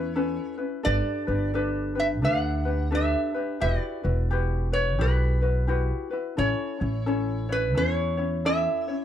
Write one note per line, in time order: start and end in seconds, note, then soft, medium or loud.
0.00 0.37 E2 medium
0.00 0.15 C#4 soft
0.00 0.15 E4 medium
0.00 0.15 B4 medium
0.00 0.55 C#5 medium
0.16 0.59 C#4 medium
0.16 0.57 E4 medium
0.16 0.58 A4 medium
0.16 0.56 B4 medium
0.58 0.83 C#4 soft
0.58 0.84 E4 soft
0.58 0.83 B4 medium
0.83 1.00 G1 medium
0.83 1.27 D4 medium
0.83 1.27 G4 medium
0.83 1.27 A4 medium
0.83 1.26 B4 medium
0.83 1.50 D5 loud
1.27 2.24 G1 medium
1.27 1.53 D4 soft
1.27 1.53 G4 soft
1.27 1.53 B4 soft
1.54 1.96 D4 medium
1.54 1.95 G4 medium
1.54 1.95 A4 medium
1.54 1.94 B4 medium
1.95 2.21 D4 soft
1.95 2.22 G4 soft
1.95 2.21 B4 medium
2.00 2.06 E5 medium
2.22 3.14 D2 medium
2.22 2.65 D4 medium
2.22 2.65 G4 medium
2.22 2.65 A4 medium
2.22 2.64 B4 medium
2.22 2.94 F#5 medium
2.65 2.90 D4 soft
2.65 2.91 G4 soft
2.65 2.90 B4 medium
2.91 3.35 D4 medium
2.91 3.35 G4 medium
2.91 3.34 A4 medium
2.91 3.33 B4 medium
2.95 3.61 E5 medium
3.34 3.61 D4 soft
3.34 3.59 G4 soft
3.34 3.61 B4 soft
3.60 3.76 E1 medium
3.60 4.04 E4 medium
3.60 4.03 F#4 medium
3.60 4.03 G4 medium
3.60 4.02 B4 medium
3.60 3.78 D#5 medium
3.78 4.73 D5 medium
4.04 5.01 E1 medium
4.04 4.30 E4 soft
4.04 4.30 F#4 soft
4.04 4.30 B4 soft
4.31 4.73 E4 medium
4.31 4.73 F#4 medium
4.31 4.72 G4 medium
4.31 4.71 B4 medium
4.72 4.98 E4 soft
4.72 4.98 F#4 soft
4.72 4.98 B4 medium
4.72 5.01 C#5 medium
4.99 5.91 B1 medium
4.99 5.42 E4 medium
4.99 5.41 F#4 medium
4.99 5.41 G4 medium
4.99 5.40 B4 medium
4.99 6.09 B4 medium
5.42 5.67 E4 soft
5.42 5.68 F#4 soft
5.42 5.67 B4 medium
5.67 6.11 E4 medium
5.67 6.11 F#4 medium
5.67 6.10 G4 medium
5.67 6.09 B4 medium
6.11 6.36 E4 soft
6.11 6.37 F#4 soft
6.11 6.38 B4 soft
6.37 6.52 A1 medium
6.37 6.81 C#4 medium
6.37 6.79 E4 medium
6.37 6.80 A4 medium
6.37 6.79 C#5 medium
6.37 7.54 C#5 medium
6.80 7.76 A1 medium
6.80 7.05 C#4 soft
6.80 7.06 E4 soft
6.80 7.06 C#5 soft
7.06 7.49 C#4 medium
7.06 7.48 E4 medium
7.06 7.50 A4 medium
7.06 7.48 C#5 medium
7.49 7.74 C#4 soft
7.49 7.75 E4 medium
7.49 7.79 B4 medium
7.49 7.75 C#5 soft
7.75 8.66 E2 medium
7.75 8.18 C#4 medium
7.75 8.17 E4 medium
7.75 8.18 A4 medium
7.75 8.16 C#5 medium
7.75 8.48 C#5 medium
8.17 8.44 C#4 soft
8.17 8.45 E4 soft
8.17 8.45 C#5 soft
8.45 8.88 C#4 medium
8.45 8.88 E4 medium
8.45 8.88 A4 medium
8.45 8.87 C#5 medium
8.45 9.05 E5 medium
8.88 9.05 C#4 soft
8.88 9.05 E4 soft
8.88 9.05 C#5 soft